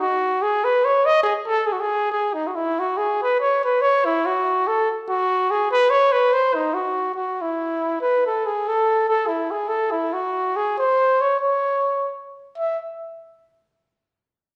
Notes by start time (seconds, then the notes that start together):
0.00 F#4
0.42 G#4
0.64 B4
0.85 C#5
1.06 D#5
1.23 G#4
1.47 A4
1.67 G#4
1.72 F#4
1.81 G#4
2.12 G#4
2.34 D#4
2.47 F#4
2.55 E4
2.79 F#4
2.97 G#4
3.23 B4
3.40 C#5
3.64 B4
3.81 C#5
4.05 E4
4.26 F#4
4.67 A4
5.09 F#4
5.51 G#4
5.71 B4
5.90 C#5
6.12 B4
6.33 C5
6.55 D#4
6.74 F#4
7.15 F#4
7.41 E4
8.01 B4
8.26 A4
8.46 G#4
8.68 A4
9.08 A4
9.27 E4
9.51 G#4
9.68 A4
9.91 E4
10.13 F#4
10.56 G#4
10.78 C5
11.21 C#5
11.40 C#5
12.58 E5